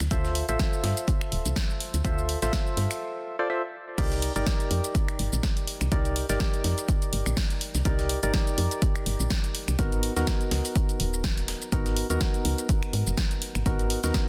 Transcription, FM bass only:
0.00 0.08 D2 medium
0.11 0.43 D2 loud
0.49 0.56 A1 medium
0.84 0.93 G2 loud
1.32 1.42 D1 medium
1.45 1.53 C2 medium
1.94 2.01 D2 medium
2.05 2.36 D2 loud
2.42 2.50 A1 medium
2.77 2.87 G2 medium
3.98 4.30 C2 loud
4.36 4.43 G1 medium
4.71 4.80 F2 loud
5.19 5.29 G1 medium
5.33 5.40 A#1 medium
5.81 5.89 C2 medium
5.92 6.23 C2 loud
6.29 6.37 G1 medium
6.64 6.74 F2 medium
7.13 7.22 G1 medium
7.26 7.34 A#1 medium
7.75 7.82 C2 medium
7.85 8.17 C2 loud
8.23 8.31 G1 medium
8.58 8.68 F2 medium
9.06 9.16 G1 medium
9.20 9.27 A#1 medium
9.68 9.76 C2 medium
9.79 10.10 G#1 loud
10.16 10.24 D#2 medium
10.51 10.61 C#2 loud
11.00 11.55 D#1 medium
11.72 12.04 G#1 loud
12.10 12.18 D#2 medium
12.45 12.55 C#2 loud
12.93 13.03 G#2 medium
13.07 13.14 F#1 medium
13.55 13.63 G#1 medium
13.66 13.97 G#1 loud
14.04 14.11 D#2 medium

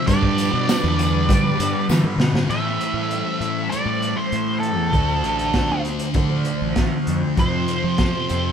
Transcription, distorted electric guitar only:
0.07 1.57 G2 medium
0.07 1.57 D3 medium
0.07 1.56 G3 loud
1.57 1.87 G2 medium
1.57 1.87 D3 medium
1.57 1.87 G3 medium
1.88 2.47 G2 medium
1.88 2.48 D3 medium
1.88 2.49 G3 medium
2.49 3.69 A2 medium
2.49 3.70 E3 medium
2.49 3.73 A3 medium
3.71 4.91 A2 medium
3.71 4.92 E3 medium
3.71 4.92 A3 medium
4.91 6.13 D3 medium
4.91 6.16 A3 medium
4.91 6.14 D4 medium
6.15 7.36 D3 medium
6.15 7.37 A3 medium
6.15 7.37 D4 medium
7.36 8.52 F2 medium
7.36 8.52 C3 medium
7.36 8.52 F3 medium

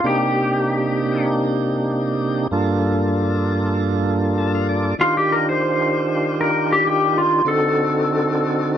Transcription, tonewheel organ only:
0.04 2.47 C3 medium
0.04 2.47 A#3 medium
0.04 2.47 D4 medium
0.04 2.47 D#4 medium
0.04 2.48 G4 medium
2.51 4.94 G2 medium
2.51 4.94 A#3 medium
2.51 4.95 D4 medium
2.51 4.95 F4 medium
2.51 4.95 A4 medium
4.38 4.52 A5 medium
4.55 4.67 F5 medium
4.69 4.97 D5 medium
4.99 7.42 D#3 medium
4.99 7.42 D4 medium
4.99 7.42 F4 medium
4.99 7.42 G4 medium
7.45 8.78 D3 medium
7.45 8.78 C4 medium
7.45 8.78 D#4 medium
7.45 8.78 F#4 medium
7.45 8.78 A4 medium

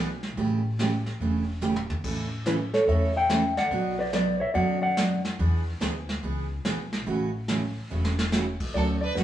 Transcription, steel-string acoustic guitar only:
0.37 0.59 C#3 medium
0.37 0.60 E3 medium
0.37 0.60 A3 medium
0.37 0.60 C#4 medium
0.37 0.60 G4 medium
0.80 0.91 C#3 medium
0.80 0.91 E3 medium
0.80 0.91 A3 medium
0.80 0.91 C#4 medium
0.80 0.92 G4 medium
1.21 1.43 C#3 medium
1.21 1.44 E3 medium
1.21 1.43 A3 medium
1.21 1.44 C#4 medium
1.21 1.44 G4 medium
1.61 1.74 C#3 medium
1.61 1.74 E3 medium
1.61 1.74 A3 medium
1.61 1.74 C#4 medium
1.61 1.74 G4 medium
2.05 2.27 C#3 medium
2.05 2.27 E3 medium
2.05 2.27 A3 medium
2.05 2.27 C#4 medium
2.05 2.27 A4 medium
2.47 2.58 C#3 medium
2.47 2.58 E3 medium
2.47 2.58 A3 medium
2.47 2.59 C#4 medium
2.47 2.59 A4 medium
2.88 3.11 C#3 medium
2.88 3.11 E3 medium
2.88 3.11 A3 medium
2.88 3.11 C#4 medium
2.88 3.11 A4 medium
3.30 3.42 C#3 medium
3.30 3.42 E3 medium
3.30 3.42 A3 medium
3.30 3.42 C#4 medium
3.30 3.42 A4 medium
3.72 3.94 B2 medium
3.72 3.94 F#3 medium
3.72 3.94 B3 medium
3.72 3.94 D4 medium
3.72 3.95 F#4 medium
4.13 4.25 B2 medium
4.13 4.25 F#3 medium
4.13 4.26 B3 medium
4.13 4.25 D4 medium
4.13 4.26 F#4 medium
4.54 4.77 B2 medium
4.54 4.77 F#3 medium
4.54 4.78 B3 medium
4.54 4.78 D4 medium
4.54 4.78 F#4 medium
4.97 5.09 B2 medium
4.97 5.09 F#3 medium
4.97 5.10 B3 medium
4.97 5.09 D4 medium
4.97 5.10 F#4 medium
5.39 5.62 E3 medium
5.39 5.62 B3 medium
5.39 5.62 D4 medium
5.39 5.62 G#4 medium
5.80 5.93 E3 medium
5.80 5.93 B3 medium
5.80 5.93 D4 medium
5.80 5.93 G#4 medium
6.23 6.45 E3 medium
6.23 6.46 B3 medium
6.23 6.46 D4 medium
6.23 6.46 G#4 medium
6.65 6.77 E3 medium
6.65 6.77 B3 medium
6.65 6.77 D4 medium
6.65 6.77 G#4 medium
7.06 7.29 C#3 medium
7.06 7.29 E3 medium
7.06 7.29 A3 medium
7.06 7.29 C#4 medium
7.06 7.29 F#4 medium
7.49 7.61 C#3 medium
7.49 7.61 E3 medium
7.49 7.61 A3 medium
7.49 7.61 C#4 medium
7.49 7.61 F#4 medium
7.90 8.13 C#3 medium
7.90 8.13 E3 medium
7.90 8.13 A3 medium
7.90 8.13 C#4 medium
7.90 8.13 F#4 medium
8.32 8.44 C#3 medium
8.32 8.44 E3 medium
8.32 8.44 A3 medium
8.32 8.44 C#4 medium
8.32 8.44 F#4 medium
8.74 8.97 D3 medium
8.74 8.97 F#3 medium
8.74 8.97 A3 medium
8.74 8.97 C#4 medium
8.74 8.97 F#4 medium
9.15 9.23 D3 medium
9.15 9.23 F#3 medium
9.15 9.23 A3 medium
9.15 9.23 C#4 medium
9.15 9.23 F#4 medium

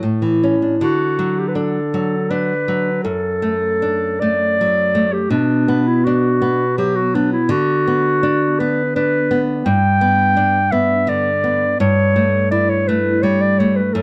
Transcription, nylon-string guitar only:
0.03 0.80 A2 soft
0.22 0.55 E3 soft
0.43 0.75 C#4 soft
0.62 0.82 D4 soft
0.81 2.99 D3 medium
1.19 1.78 F#3 soft
1.55 2.15 D4 soft
1.94 2.52 F#3 soft
2.31 2.89 D4 soft
2.68 3.04 F#3 soft
3.05 5.27 F#2 medium
3.42 4.05 A3 soft
3.82 4.44 D4 soft
4.22 4.80 A3 soft
4.61 5.17 F#3 soft
4.95 5.31 A3 soft
5.30 7.47 B2 medium
5.68 6.27 B3 soft
6.07 6.64 D4 medium
6.42 7.00 B3 soft
6.78 7.36 F#3 soft
7.15 7.51 B3 soft
7.49 9.62 D3 medium
7.87 8.45 B3 soft
8.23 8.81 D4 medium
8.60 9.17 B3 soft
8.96 9.53 D4 soft
9.31 9.67 B3 soft
9.66 11.74 G2 medium
10.01 10.58 B3 soft
10.37 10.93 D4 medium
10.72 11.29 B3 soft
11.07 11.64 D3 soft
11.44 11.79 B3 soft
11.80 13.91 G2 medium
12.16 12.73 A3 soft
12.52 13.08 E4 soft
12.89 13.45 A3 soft
13.23 13.80 G3 soft
13.60 13.95 A3 soft
13.95 14.02 F#2 medium

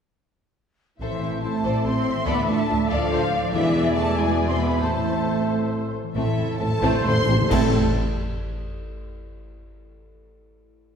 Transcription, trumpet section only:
1.01 2.24 E5 soft
2.28 3.52 D5 medium
3.53 4.14 E5 medium
4.18 4.82 E5 medium
4.83 5.92 E5 medium
6.15 6.57 E4 medium
6.59 7.04 A4 medium
7.04 7.51 C5 medium
7.51 7.71 A4 medium

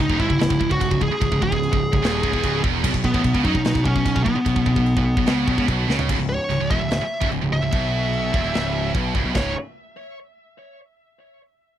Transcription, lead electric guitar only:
0.01 0.20 D#4 medium
0.21 0.71 E4 loud
0.72 1.00 F#4 loud
1.02 1.42 G#4 loud
1.43 2.60 G#4 loud
3.05 3.47 B3 medium
3.44 3.86 D#4 loud
3.84 4.23 C#4 loud
4.24 5.63 B3 medium
6.29 6.70 C#5 medium
6.71 7.28 E5 loud
7.53 8.91 E5 medium
9.35 9.54 C#5 medium

